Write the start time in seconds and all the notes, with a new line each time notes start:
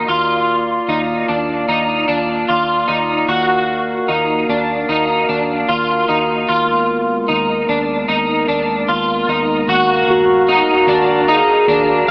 Already playing: F5
0.08 D#2 A#3 F4 D5
0.88 D#2 D#4
1.28 D#2 D4
1.68 D#2 D#4
2.08 D#2 D4
2.49 D#2 F4
2.88 D#2 D#4
3.28 D#2 A#3 F#4 A#4
4.08 D#2 D#4
4.49 D#2 D4
4.89 D#2 D#4
5.29 D#2 D4
5.69 D#2 F4
6.09 D#2 D#4
6.49 D#2 G#3 B3 F4 A#4
7.28 D#2 D#4
7.69 D#2 D4
8.08 D#2 D#4
8.48 D#2 D4
8.88 D#2 F4
9.28 D#2 D#4
9.68 D#2 F#4 A#4 F5 A#5
10.07 D#2 F#4
10.48 D#4
10.87 D#2 D4
11.28 D#4 G#4
11.68 D#2 D4